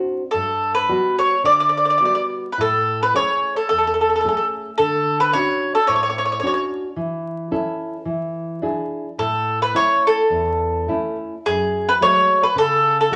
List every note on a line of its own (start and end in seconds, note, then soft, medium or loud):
0.00 0.22 C4 soft
0.00 0.22 D4 soft
0.00 0.22 F#4 medium
0.31 0.87 G2 medium
0.31 0.71 A4 medium
0.75 1.15 B4 medium
0.89 1.33 G3 soft
0.89 1.34 B3 soft
0.89 1.34 F#4 medium
1.18 1.42 C#5 medium
1.44 1.99 D3 medium
1.44 1.51 D5 medium
1.52 1.59 D5 medium
1.60 1.68 D5 medium
1.69 1.76 D5 medium
1.77 1.83 D5 medium
1.85 1.89 D5 soft
1.90 1.97 D5 medium
1.98 2.46 G3 soft
1.98 2.46 B3 soft
1.98 2.47 F#4 soft
1.98 2.04 D5 soft
2.05 2.13 D5 medium
2.15 2.22 D5 medium
2.52 2.58 B4 medium
2.58 3.13 A2 medium
2.58 3.00 A4 medium
3.03 3.14 B4 medium
3.14 3.59 A3 soft
3.14 3.59 C#4 soft
3.14 3.59 G#4 soft
3.14 3.55 C#5 medium
3.56 3.68 A4 medium
3.69 4.24 E2 soft
3.69 3.77 A4 medium
3.78 3.85 A4 soft
3.87 3.93 A4 soft
3.94 4.00 A4 soft
4.01 4.07 A4 soft
4.10 4.14 A4 soft
4.16 4.19 A4 soft
4.21 4.69 A3 soft
4.21 4.27 A4 soft
4.26 4.69 C#4 soft
4.26 4.69 G#4 soft
4.26 4.36 A4 soft
4.37 4.44 A4 soft
4.78 5.33 D3 medium
4.78 5.18 A4 medium
5.20 5.33 B4 medium
5.33 5.78 C#4 soft
5.33 5.79 D4 soft
5.33 5.79 F#4 soft
5.33 5.73 C#5 medium
5.75 5.87 A4 medium
5.87 6.41 A2 medium
5.87 5.94 C#5 medium
5.96 6.02 C#5 medium
6.03 6.08 C#5 medium
6.10 6.17 C#5 soft
6.18 6.24 C#5 medium
6.25 6.31 C#5 medium
6.32 6.38 C#5 soft
6.40 6.86 C#4 soft
6.40 6.86 D4 soft
6.40 6.45 C#5 soft
6.44 6.87 F#4 soft
6.44 6.52 C#5 soft
6.54 6.61 C#5 medium
6.96 7.50 E3 medium
7.51 7.95 C#4 soft
7.51 7.96 E4 soft
7.51 7.96 A4 medium
8.05 8.60 E3 medium
8.62 9.07 D4 soft
8.62 9.07 E4 soft
8.62 9.07 G#4 soft
9.18 9.72 A2 medium
9.18 9.58 A4 medium
9.62 9.73 B4 medium
9.74 10.19 A3 soft
9.74 10.19 C#4 soft
9.74 10.19 E4 soft
9.74 10.03 C#5 medium
10.07 11.16 A4 medium
10.30 10.86 E2 medium
10.88 11.34 A3 soft
10.88 11.34 C#4 soft
10.88 11.34 E4 soft
11.46 11.99 F#2 medium
11.46 11.89 G#4 medium
11.89 11.94 B4 medium
12.01 12.45 F#3 soft
12.01 12.45 G#3 soft
12.01 12.45 A3 soft
12.01 12.41 C#5 medium
12.43 12.56 B4 medium
12.56 13.09 C#3 medium
12.56 12.97 A4 medium
13.01 13.11 A4 medium
13.11 13.16 F#3 soft
13.11 13.16 G#3 soft
13.11 13.16 A3 soft